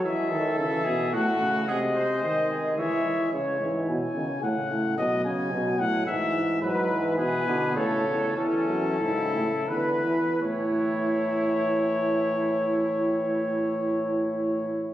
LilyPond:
<<
  \new Staff \with { instrumentName = "Trumpet" } { \time 3/4 \key cis \phrygian \tempo 4 = 108 e''4 e''4 fis''4 | dis''2 e''4 | cis''4 gis''4 fis''4 | dis''8 gis''4 fis''8 e''4 |
\key a \major b'4 b'4 cis''4 | a'2 b'4 | cis''2.~ | cis''2. | }
  \new Staff \with { instrumentName = "Trumpet" } { \time 3/4 \key cis \phrygian gis'8 a'4 gis'8 fis'4 | gis'8 bis'8 bis'8 gis'8 cis''4 | r2. | r2. |
\key a \major b'4 gis'4 a'4 | cis'4 e'4 b'4 | e'2.~ | e'2. | }
  \new Staff \with { instrumentName = "Trombone" } { \clef bass \time 3/4 \key cis \phrygian gis4 e4 a4 | gis4 gis4 gis4 | gis8 e4 dis8 cis4 | fis2 e4 |
\key a \major fis8 e4 d8 cis4 | e4 cis4 d8 e8 | e2.~ | e2. | }
  \new Staff \with { instrumentName = "Bass trombone" } { \clef bass \time 3/4 \key cis \phrygian e8 dis8 cis8 b,8 a,8 cis8 | bis,4 dis4 e8 e8 | cis8 gis,8 b,8 cis8 a,8 a,8 | b,8 cis8 b,8 a,8 gis,8 gis,8 |
\key a \major gis,4 b,8 b,8 a,8 e,8 | e,8 fis,8 gis,8 a,8 e,4 | a,2.~ | a,2. | }
>>